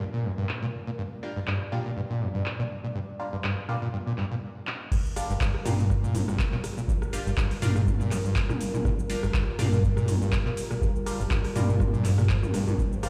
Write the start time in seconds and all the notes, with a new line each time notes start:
Already playing: G3 F4 A#4
0.13 A#2
0.25 F2
0.38 G2
0.49 clap
0.63 A#2
0.87 A#2
0.98 G2 D5
1.23 G3 A#3 D4 F4
1.36 G2
1.47 G2, clap
1.72 A#2 G3 A#3 D4 F4
1.86 A#2
1.97 G2
2.10 A#2
2.21 F2
2.35 G2
2.46 clap
2.59 A#2
2.84 A#2
2.95 G2
3.20 G3 A#3 D4 F4
3.33 G2
3.44 G2, clap
3.69 A#2 G3 A#3 D4 F4
3.82 A#2
3.93 G2
4.07 A#2
4.18 G2, clap
4.31 A#2
4.67 clap
4.92 G1 G2 G3 F4 A#4, kick, crash, cabasa
5.06 cabasa
5.16 G3 A#3 D4 F4, cross-stick, open hi-hat, cabasa
5.30 G1 G2, cabasa
5.41 G2, kick, clap, cabasa
5.54 cross-stick
5.65 G2 A#2 G3 A#3 D4 F4, open hi-hat, mid tom, cabasa
5.79 A#2, cabasa
5.90 G2, kick, cross-stick, cabasa
6.03 A#2, cabasa
6.14 F2 G2, open hi-hat, mid tom, cabasa
6.28 G2, cross-stick, cabasa
6.39 kick, clap, cabasa
6.53 A#2, clap
6.64 cross-stick, open hi-hat, cabasa
6.77 A#2, cabasa
6.88 G1 G2, kick, cabasa
7.02 cross-stick, cabasa
7.13 G3 A#3 D4 F4, open hi-hat, cabasa
7.26 G1 G2, cabasa
7.37 G2, kick, cross-stick, clap, cabasa
7.51 open hi-hat, cabasa
7.62 G2 A#2 G3 A#3 D4 F4, open hi-hat, mid tom, cabasa
7.76 A#2, cross-stick, cabasa
7.87 G2, kick, mid tom, cabasa
8.00 A#2, cabasa
8.11 F2 G2, cross-stick, clap, open hi-hat, cabasa
8.25 G2, cabasa
8.36 kick, clap, cabasa
8.49 A#2, cross-stick, mid tom, cabasa
8.61 open hi-hat, cabasa
8.74 A#2, mid tom, cabasa
8.85 G1 G2, kick, cross-stick, cabasa
8.99 cabasa
9.10 G3 A#3 D4 F4, open hi-hat, cabasa
9.23 G1 G2, cross-stick, cabasa
9.34 G2, kick, clap, cabasa
9.59 G2 A#2 G3 A#3 D4 F4, cross-stick, open hi-hat, mid tom, cabasa
9.72 A#2, cabasa
9.83 G2, kick, cabasa
9.97 A#2, cross-stick, cabasa
10.08 F2 G2, open hi-hat, mid tom, cabasa
10.22 G2, cabasa
10.32 kick, cross-stick, clap, cabasa
10.46 A#2, clap
10.57 open hi-hat, cabasa
10.71 A#2, cross-stick, cabasa
10.82 G1 G2, kick, cabasa
10.96 cabasa
11.06 G3 A#3 D4 F4, cross-stick, open hi-hat, cabasa
11.20 G1 G2, cabasa
11.31 G2, kick, clap, cabasa
11.44 cross-stick, open hi-hat, cabasa
11.55 G2 A#2 G3 A#3 D4 F4, open hi-hat, mid tom, cabasa
11.69 A#2, cabasa
11.80 G2, kick, cross-stick, mid tom, cabasa
11.93 A#2, cabasa
12.05 F2 G2, clap, open hi-hat, cabasa
12.18 A#2, cross-stick, cabasa
12.29 F3, kick, clap, cabasa
12.43 G2, mid tom, cabasa
12.54 G2, cross-stick, open hi-hat, cabasa
12.67 G2, mid tom, cabasa
12.78 G1 G2 G4 C5, kick, cabasa
12.93 cabasa
13.03 G3 A#3 D4 F4, cross-stick, open hi-hat, ride, cabasa